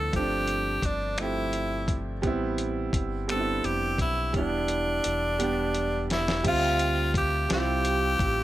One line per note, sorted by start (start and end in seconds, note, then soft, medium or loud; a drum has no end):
0.00 0.12 F3 medium
0.00 0.14 A3 medium
0.00 0.15 B3 medium
0.00 0.15 D4 soft
0.00 0.15 E4 medium
0.00 0.15 A4 medium
0.12 0.80 G1 medium
0.12 1.08 F3 medium
0.12 1.09 A3 medium
0.12 1.10 C4 medium
0.12 0.87 G4 medium
0.12 kick medium
0.12 closed hi-hat soft
0.18 1.11 D4 medium
0.47 closed hi-hat soft
0.82 2.24 G1 medium
0.82 1.23 D4 medium
0.82 kick medium
0.82 closed hi-hat medium
1.18 2.13 F3 medium
1.18 2.14 A3 medium
1.18 2.15 C4 medium
1.18 1.99 E4 medium
1.18 finger snap medium
1.18 closed hi-hat medium
1.23 2.16 G4 medium
1.53 closed hi-hat soft
1.88 kick medium
1.88 closed hi-hat soft
2.22 2.90 A1 medium
2.22 3.18 G3 medium
2.22 3.19 B3 medium
2.22 3.20 C4 medium
2.22 kick medium
2.22 closed hi-hat soft
2.27 3.21 E4 medium
2.58 closed hi-hat soft
2.93 3.60 G1 medium
2.93 kick medium
2.93 closed hi-hat medium
3.28 4.24 G3 medium
3.28 4.25 B3 medium
3.28 4.25 C4 medium
3.28 3.67 A4 medium
3.28 finger snap medium
3.28 closed hi-hat medium
3.33 3.38 D4 soft
3.40 4.30 E4 medium
3.64 3.96 F1 medium
3.64 4.00 G4 medium
3.64 closed hi-hat soft
3.98 4.31 B1 medium
3.98 4.33 E4 medium
3.98 kick medium
3.98 closed hi-hat soft
4.33 5.01 E1 medium
4.33 5.29 G3 medium
4.33 5.30 B3 medium
4.33 5.30 D4 medium
4.33 6.07 D4 medium
4.33 kick medium
4.33 closed hi-hat medium
4.38 5.31 E4 medium
4.68 closed hi-hat soft
5.04 6.42 E1 medium
5.04 closed hi-hat medium
5.39 6.34 G3 medium
5.39 6.35 B3 medium
5.39 6.36 D4 medium
5.39 closed hi-hat medium
5.43 6.37 G4 medium
5.74 closed hi-hat soft
6.10 6.44 E4 medium
6.10 snare medium
6.10 closed hi-hat soft
6.28 snare medium
6.43 7.46 D2 loud
6.43 7.39 G3 medium
6.43 7.40 C4 medium
6.43 7.41 E5 medium
6.43 kick loud
6.43 closed hi-hat medium
6.43 crash medium
6.48 7.13 F4 medium
6.48 7.42 F4 medium
6.79 closed hi-hat medium
7.14 7.49 G4 medium
7.14 kick medium
7.14 closed hi-hat medium
7.49 8.17 C2 medium
7.49 8.44 G3 medium
7.49 8.44 C4 medium
7.49 8.44 E4 medium
7.49 8.44 G4 loud
7.49 snare loud
7.49 closed hi-hat medium
7.55 8.44 F4 medium
7.85 closed hi-hat medium
8.19 8.44 A1 medium
8.19 kick medium
8.19 closed hi-hat medium